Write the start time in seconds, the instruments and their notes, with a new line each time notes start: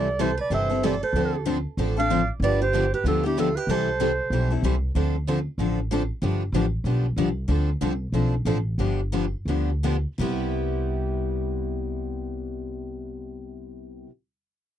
Already playing: upright bass C2, steel-string acoustic guitar A4, clarinet D5
0.19 steel-string acoustic guitar C3 E3 G3 C4 E4 A4, clarinet C5
0.37 steel-string acoustic guitar B4, clarinet D5
0.50 upright bass G1, steel-string acoustic guitar C3 E3 G3 C4 E4 A4 C5, clarinet E5
0.70 steel-string acoustic guitar G3 C4 E4 A4
0.83 steel-string acoustic guitar C3 E3 G3 C4 E4 A4, clarinet D5
1.03 steel-string acoustic guitar A4, clarinet C5
1.13 upright bass D2, steel-string acoustic guitar D3 F3 C4 D4 A4
1.45 steel-string acoustic guitar D3 F3 C4 D4 A4
1.77 upright bass A1, steel-string acoustic guitar D3 F3 C4 D4 A4
1.97 steel-string acoustic guitar C4 D4 A4 D5, clarinet F5
2.10 steel-string acoustic guitar D3 F3 C4 D4 A4
2.40 upright bass G1, steel-string acoustic guitar D3 F3 B3, clarinet D5
2.44 steel-string acoustic guitar D4 G4 B4
2.62 steel-string acoustic guitar G4, clarinet C5
2.74 steel-string acoustic guitar D3 F3 B3 D4 G4
2.94 steel-string acoustic guitar G4, clarinet B4
3.04 upright bass D2, steel-string acoustic guitar D3 F3 B3 D4 F4 G4, clarinet A4
3.24 steel-string acoustic guitar B3 D4 E4 G4, clarinet G4
3.38 steel-string acoustic guitar D3 F3 B3 D4 F4 G4, clarinet A4
3.56 steel-string acoustic guitar G4, clarinet B4
3.67 upright bass C2, steel-string acoustic guitar C3 E3 G3 C4 E4 A4, clarinet C5
4.00 steel-string acoustic guitar C3 E3 G3 C4 E4 A4
4.30 upright bass B1, steel-string acoustic guitar C3 E3 G3 C4 E4
4.34 steel-string acoustic guitar A4
4.50 steel-string acoustic guitar G3 C4 E4 A4
4.62 upright bass C2, steel-string acoustic guitar C3 E3 G3 C4 E4 A4
4.95 upright bass D2, steel-string acoustic guitar D3 F3 C4 D4 A4
5.28 steel-string acoustic guitar D3 F3 C4 D4 A4
5.58 upright bass A1, steel-string acoustic guitar D3 F3 C4 D4 A4
5.91 steel-string acoustic guitar D3 F3 C4 D4 A4
6.22 upright bass G1, steel-string acoustic guitar D3 F3 B3 D4 G4
6.52 upright bass A1, steel-string acoustic guitar D3 F3 B3 D4 G4
6.84 upright bass B1, steel-string acoustic guitar D3 F3 B3 D4 G4
7.16 upright bass C2, steel-string acoustic guitar D3 F3 B3 D4 G4
7.48 upright bass D2, steel-string acoustic guitar D3 F3 C4 D4 A4
7.81 upright bass C2, steel-string acoustic guitar D3 F3 C4 D4 A4
8.12 upright bass B1, steel-string acoustic guitar D3 F3 C4 D4 A4
8.45 upright bass A1, steel-string acoustic guitar D3 F3 C4 D4 A4
8.78 upright bass G1, steel-string acoustic guitar D3 F3 B3 D4 G4
9.12 steel-string acoustic guitar D3 F3 B3 D4 G4
9.45 upright bass D2, steel-string acoustic guitar D3 F3 B3 D4 G4
9.83 steel-string acoustic guitar D3 F3 B3 D4 G4
10.18 upright bass C2, steel-string acoustic guitar C3 G3 B3 E4 G4